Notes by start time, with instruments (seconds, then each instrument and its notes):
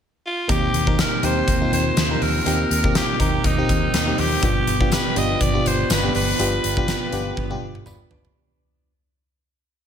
0.27 alto saxophone F4
0.48 fingered electric bass D#2, fm electric piano A#3 C4 D#4 G4, clean electric guitar A#3 G4, alto saxophone G4, kick, closed hi-hat
0.73 fingered electric bass D#2, clean electric guitar A#3, closed hi-hat
0.86 fm electric piano A#3 C4 D#4 A#4, kick
0.98 clean electric guitar G4, alto saxophone A#4, snare, closed hi-hat
1.23 fingered electric bass D#2, fm electric piano A#3 C4 D#4 G4, clean electric guitar C4, alto saxophone C5, closed hi-hat
1.47 fingered electric bass D#2, clean electric guitar A#3, kick, closed hi-hat
1.61 fm electric piano A#3 C4 D#4 F4
1.72 fingered electric bass D#2, clean electric guitar C4, alto saxophone C5, closed hi-hat
1.97 fingered electric bass D#2, clean electric guitar A#3, snare, closed hi-hat
2.10 fm electric piano A#3 C4 D#4 A#4
2.21 fingered electric bass D#2, clean electric guitar C4, alto saxophone A#4, open hi-hat
2.46 fingered electric bass D#2, fm electric piano A#3 C4 D#4 G4, clean electric guitar A#3 G4, closed hi-hat
2.70 fingered electric bass D#2, clean electric guitar A#3, closed hi-hat
2.84 fm electric piano A#3 C4 D#4 G4, kick
2.95 clean electric guitar G4, alto saxophone G4, snare, closed hi-hat
3.19 fingered electric bass D#2, fm electric piano A#3 C4 D#4 A#4, clean electric guitar C4, alto saxophone G4, kick, closed hi-hat
3.44 fingered electric bass D#2, clean electric guitar A#3, alto saxophone D#4, kick, closed hi-hat
3.58 fm electric piano A#3 C4 D#4 G4
3.69 fingered electric bass D#2, clean electric guitar C4, kick, closed hi-hat
3.93 fingered electric bass D#2, clean electric guitar A#3, snare, closed hi-hat
4.06 fm electric piano A#3 C4 D#4 G4
4.18 fingered electric bass D#2, clean electric guitar C4, alto saxophone G4, open hi-hat
4.42 fingered electric bass G1, clean electric guitar F3 G4, fm electric piano B3 D4 F4 G4, alto saxophone G4, kick, closed hi-hat
4.67 fingered electric bass G1, clean electric guitar B3, closed hi-hat
4.80 fm electric piano B3 D4 F4 G4, kick
4.92 clean electric guitar G4, alto saxophone B4, snare, closed hi-hat, tambourine
5.16 fingered electric bass G1, fm electric piano B3 D4 F4 G4, clean electric guitar D4, alto saxophone D#5, closed hi-hat
5.40 fingered electric bass G1, clean electric guitar B3, alto saxophone D5, kick, closed hi-hat
5.54 fm electric piano B3 D4 F4 G4
5.65 fingered electric bass G1, clean electric guitar D4, alto saxophone C5, closed hi-hat
5.90 fingered electric bass G1, clean electric guitar B3, alto saxophone B4, snare, closed hi-hat, tambourine
6.03 fm electric piano B3 D4 F4 G4
6.14 fingered electric bass G1, clean electric guitar D4, alto saxophone B4, open hi-hat
6.39 fingered electric bass G1, clean electric guitar F3 G4, fm electric piano B3 D4 F4 G4, closed hi-hat
6.63 fingered electric bass G1, clean electric guitar B3, closed hi-hat
6.77 fm electric piano B3 D4 F4 G4, kick
6.88 clean electric guitar G4, snare, closed hi-hat, tambourine
7.12 fingered electric bass G1, fm electric piano B3 D4 F4 G4, clean electric guitar D4, closed hi-hat
7.37 fingered electric bass G1, clean electric guitar B3, kick, high tom
7.50 fm electric piano B3 D4 F4 G4, high tom
7.62 fingered electric bass G1, clean electric guitar D4
7.75 mid tom
7.86 fingered electric bass G1, clean electric guitar B3, fm electric piano F4 D5 B5, mid tom, tambourine
8.10 fingered electric bass G1, fm electric piano D4 B4, clean electric guitar D4, floor tom
8.25 floor tom